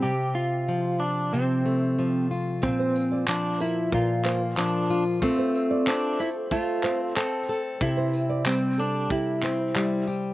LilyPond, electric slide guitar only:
\new Staff \with { instrumentName = "Electric slide guitar" } { \time 4/4 \key f \major \tempo 4 = 93 g'8 f'4 d'8 c'4. r8 | c'4 d'8 e'8 f'4 d'8. r16 | c'4 d'8 e'8 f'4 a'8. r16 | e'4 c'8 d'8 e'4. r8 | }